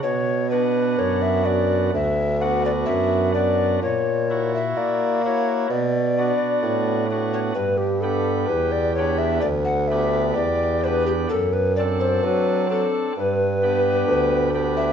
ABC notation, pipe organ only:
X:1
M:4/4
L:1/8
Q:1/4=64
K:Bm
V:1 name="Pipe organ"
z [B,DF]2 [B,DF] z [B,DF]2 [B,DF] | z [EF]2 [EF] z [B,DF]2 [B,DF] | z [B,DG]2 [B,DG] z [B,DG]2 [B,DG] | z [=CDA]2 [CDA] z [B,DG]2 [B,DG] |]
V:2 name="Pipe organ" clef=bass
B,,2 F,,2 D,,2 F,,2 | ^A,,2 ^A,2 B,, z =A,,2 | G,,2 E,,2 D,,2 E,,2 | F,,2 F, z G,,2 D,,2 |]